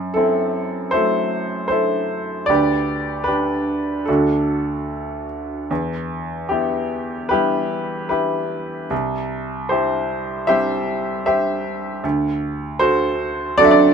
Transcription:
0.00 2.45 F#2 medium
0.14 1.67 C4 soft
0.14 0.92 E4 soft
0.14 0.93 A4 medium
0.91 2.45 F#3 soft
0.91 2.45 A3 soft
0.91 1.69 E4 soft
0.91 1.70 A4 medium
0.91 1.66 C5 medium
1.68 2.45 E4 soft
1.68 2.46 A4 medium
1.68 2.50 C5 medium
2.46 4.04 D2 medium
2.46 3.27 G4 medium
2.46 3.22 B4 medium
2.46 3.29 D5 medium
3.24 4.04 D4 soft
3.24 4.08 B4 medium
3.28 4.04 G4 soft
4.05 5.66 D2 soft
4.05 5.67 D4 soft
4.05 5.67 F#4 soft
4.05 5.25 A4 medium
5.71 8.87 E2 medium
6.49 7.30 B3 soft
6.49 7.29 E4 soft
6.49 7.29 G4 medium
7.29 8.87 G3 soft
7.29 8.87 B3 soft
7.29 8.09 E4 medium
7.29 8.09 G4 medium
7.29 8.07 B4 medium
8.09 8.86 E4 soft
8.09 8.87 G4 soft
8.09 8.86 B4 medium
8.90 12.00 C2 medium
9.69 10.48 E4 soft
9.69 10.47 G4 soft
9.69 10.47 C5 medium
10.47 12.00 G3 soft
10.47 12.00 C4 soft
10.47 12.00 E4 soft
10.47 11.25 G4 medium
10.47 11.25 C5 medium
10.47 11.24 E5 medium
11.26 12.00 G4 medium
11.26 12.00 C5 soft
11.26 12.00 E5 medium
12.04 13.94 D2 medium
12.79 13.57 F#4 medium
12.79 13.57 A4 medium
12.79 13.59 C5 medium
13.57 13.94 F#3 soft
13.57 13.94 C4 soft
13.57 13.94 D4 soft
13.57 13.94 F#4 medium
13.57 13.94 A4 medium
13.57 13.64 D5 loud
13.65 13.71 E5 medium
13.71 13.94 D5 medium

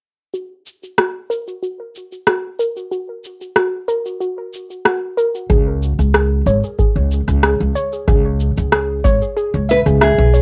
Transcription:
0.33 0.50 F#4 medium
0.33 cabasa soft
0.66 cabasa medium
0.83 cabasa soft
0.98 1.13 F#4 medium
0.98 cross-stick medium
0.98 cabasa soft
1.30 1.46 A#4 medium
1.30 cabasa medium
1.48 cabasa soft
1.62 1.79 F#4 medium
1.62 cabasa soft
1.96 cabasa medium
2.12 cabasa soft
2.27 2.42 F#4 medium
2.27 cross-stick medium
2.27 cabasa soft
2.59 2.75 A#4 medium
2.59 cabasa medium
2.77 cabasa soft
2.92 3.08 F#4 medium
2.92 cabasa soft
3.24 cabasa medium
3.41 cabasa soft
3.56 3.71 F#4 loud
3.56 cross-stick medium
3.56 cabasa soft
3.88 4.04 A#4 loud
3.88 cabasa medium
4.06 cabasa soft
4.20 4.37 F#4 medium
4.20 cabasa soft
4.53 cabasa medium
4.70 cabasa soft
4.85 5.00 F#4 medium
4.85 cross-stick medium
4.85 cabasa soft
5.17 5.33 A#4 loud
5.17 cabasa medium
5.35 cabasa soft
5.50 5.92 C#2 medium
5.50 5.66 G#4 medium
5.50 kick loud
5.50 cabasa soft
5.83 cabasa medium
5.99 6.40 C#2 medium
5.99 cabasa soft
6.14 6.29 G#4 loud
6.14 cross-stick medium
6.14 cabasa soft
6.46 6.59 G#1 medium
6.46 6.63 C#5 medium
6.46 cabasa medium
6.64 cabasa soft
6.79 6.95 G#4 medium
6.79 kick loud
6.79 cabasa soft
6.96 7.19 C#2 medium
7.11 cabasa medium
7.28 7.51 C#2 medium
7.28 cabasa soft
7.43 7.58 G#4 medium
7.43 cross-stick medium
7.43 cabasa soft
7.60 7.72 C#2 medium
7.75 7.91 C#5 medium
7.75 cabasa medium
7.93 cabasa soft
8.08 8.50 C#2 loud
8.08 8.24 G#4 medium
8.08 kick loud
8.08 cabasa soft
8.40 cabasa medium
8.57 8.99 C#2 medium
8.57 cabasa soft
8.72 8.87 G#4 loud
8.72 cross-stick medium
8.72 cabasa soft
9.04 9.17 G#1 medium
9.04 9.20 C#5 medium
9.04 kick loud
9.04 cabasa medium
9.22 cabasa soft
9.37 9.53 G#4 medium
9.37 cabasa soft
9.54 9.77 C#2 medium
9.69 9.79 B4 loud
9.69 9.84 E5 medium
9.69 cabasa medium
9.86 10.10 C#2 medium
9.86 10.00 G#4 medium
9.86 cabasa soft
10.01 10.42 G#4 medium
10.01 10.16 E5 loud
10.01 cross-stick medium
10.01 cabasa soft
10.18 10.42 B1 medium
10.34 10.42 C#5 medium
10.34 cabasa medium

